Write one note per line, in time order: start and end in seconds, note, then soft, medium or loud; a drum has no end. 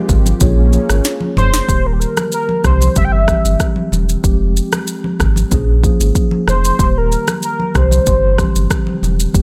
0.00 0.43 G#3 medium
0.00 1.66 G#3 medium
0.00 0.42 C4 medium
0.00 0.40 F4 loud
0.00 0.41 F4 medium
0.00 0.38 G4 medium
0.00 0.43 G4 medium
0.00 0.42 A#4 loud
0.00 0.42 C5 loud
0.09 0.33 G#1 medium
0.09 kick medium
0.09 low conga medium
0.09 shaker medium
0.26 high conga medium
0.26 shaker medium
0.40 0.78 A#1 loud
0.40 0.66 A#3 loud
0.40 1.67 A#3 medium
0.40 0.66 C#4 medium
0.40 1.68 C#4 loud
0.40 0.67 F4 medium
0.40 0.67 G#4 medium
0.40 0.67 C#5 loud
0.40 kick loud
0.40 low conga medium
0.40 shaker medium
0.71 1.43 A#3 medium
0.71 1.43 C#4 medium
0.71 1.44 F4 medium
0.71 1.44 G#4 medium
0.71 1.44 C#5 loud
0.71 high conga medium
0.71 shaker medium
0.89 1.01 G#1 loud
0.89 cross-stick medium
0.89 shaker medium
1.05 snare medium
1.05 shaker medium
1.20 high conga medium
1.37 1.61 F1 loud
1.37 1.88 C5 loud
1.37 mid tom medium
1.37 high conga medium
1.37 low conga medium
1.37 shaker soft
1.54 snare loud
1.54 shaker medium
1.67 2.05 D#1 loud
1.67 2.62 D#3 medium
1.67 2.63 G3 medium
1.67 2.63 A#3 medium
1.67 2.64 G4 medium
1.67 kick loud
1.67 shaker medium
1.87 1.94 A#4 medium
1.93 2.01 G4 medium
2.00 2.33 A#4 medium
2.00 shaker medium
2.17 cross-stick loud
2.17 high conga medium
2.17 shaker medium
2.32 2.63 A#4 medium
2.32 shaker medium
2.49 high conga medium
2.63 2.89 C2 loud
2.63 3.15 E3 medium
2.63 3.16 G3 medium
2.63 3.16 C4 medium
2.63 3.17 G4 medium
2.63 2.95 C5 medium
2.63 kick medium
2.63 cross-stick medium
2.63 low conga medium
2.63 shaker medium
2.80 high conga medium
2.80 shaker medium
2.96 3.33 G1 loud
2.96 3.06 E5 loud
2.96 kick loud
2.96 low conga medium
2.96 shaker medium
3.05 3.13 G5 medium
3.12 3.61 E5 loud
3.27 3.99 E3 medium
3.27 3.99 G3 medium
3.27 3.99 C4 medium
3.27 4.00 G4 medium
3.27 kick loud
3.27 cross-stick loud
3.27 high conga medium
3.27 shaker medium
3.45 3.56 G1 loud
3.45 high conga medium
3.45 shaker medium
3.60 kick medium
3.60 cross-stick medium
3.60 shaker medium
3.76 high conga medium
3.92 4.16 E1 medium
3.92 high conga medium
3.92 low conga medium
3.92 shaker soft
4.09 shaker medium
4.23 4.61 F1 loud
4.23 5.18 F3 medium
4.23 5.18 G#3 medium
4.23 5.19 C4 medium
4.23 5.19 G4 loud
4.23 kick loud
4.23 shaker medium
4.57 shaker medium
4.72 cross-stick loud
4.72 high conga medium
4.72 shaker medium
4.87 shaker medium
5.04 high conga medium
5.20 5.44 G#1 medium
5.20 kick medium
5.20 cross-stick medium
5.20 low conga medium
5.20 shaker soft
5.36 high conga medium
5.36 shaker medium
5.50 5.88 A#1 loud
5.50 5.77 F3 loud
5.50 5.77 A#3 medium
5.50 5.78 C#4 medium
5.50 5.78 G#4 loud
5.50 kick loud
5.50 low conga medium
5.50 shaker medium
5.83 6.54 F3 medium
5.83 6.54 A#3 medium
5.83 6.55 C#4 medium
5.83 6.55 G#4 loud
5.83 kick medium
5.83 high conga medium
5.83 shaker medium
6.00 6.12 G#1 medium
6.00 high conga medium
6.00 shaker medium
6.15 kick medium
6.15 shaker medium
6.31 high conga medium
6.47 6.71 F1 medium
6.47 6.99 C5 loud
6.47 cross-stick medium
6.47 high conga medium
6.47 low conga medium
6.47 shaker soft
6.65 shaker medium
6.78 7.16 D#1 loud
6.78 7.73 D#3 medium
6.78 7.73 G3 medium
6.78 7.74 A#3 medium
6.78 7.74 G4 medium
6.78 kick loud
6.78 shaker medium
6.98 7.44 A#4 loud
7.12 shaker medium
7.28 cross-stick loud
7.28 high conga medium
7.28 shaker medium
7.43 7.78 A#4 loud
7.43 shaker medium
7.60 high conga medium
7.74 7.99 C2 loud
7.74 8.26 E3 medium
7.74 8.26 G3 medium
7.74 8.27 C4 medium
7.74 8.27 G4 medium
7.74 9.03 C5 loud
7.74 kick medium
7.74 cross-stick medium
7.74 low conga medium
7.74 shaker medium
7.91 high conga medium
7.91 shaker medium
8.07 8.44 G1 loud
8.07 kick medium
8.07 low conga medium
8.07 shaker medium
8.38 8.45 C#3 medium
8.38 9.10 G3 medium
8.38 9.10 C4 medium
8.38 9.11 G4 medium
8.38 kick medium
8.38 cross-stick medium
8.38 high conga medium
8.38 shaker medium
8.44 9.13 E3 medium
8.55 8.67 G1 medium
8.55 high conga medium
8.55 shaker medium
8.71 kick medium
8.71 cross-stick loud
8.71 shaker medium
8.87 high conga medium
9.02 9.27 E1 medium
9.02 high conga medium
9.02 low conga medium
9.02 shaker soft
9.20 shaker medium
9.33 9.42 F1 loud
9.33 9.42 F3 medium
9.33 9.42 G#3 medium
9.33 9.42 C4 medium
9.33 9.42 G4 loud
9.33 kick loud
9.33 shaker medium